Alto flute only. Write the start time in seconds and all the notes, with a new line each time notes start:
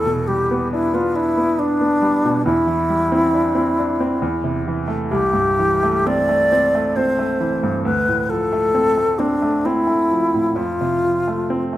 Already playing: A4
0.27 G4
0.72 E4
0.94 F4
1.16 E4
1.59 D4
2.45 E4
5.10 G4
6.07 D5
6.96 C5
7.85 B4
8.30 A4
9.19 D4
9.65 E4
10.56 F4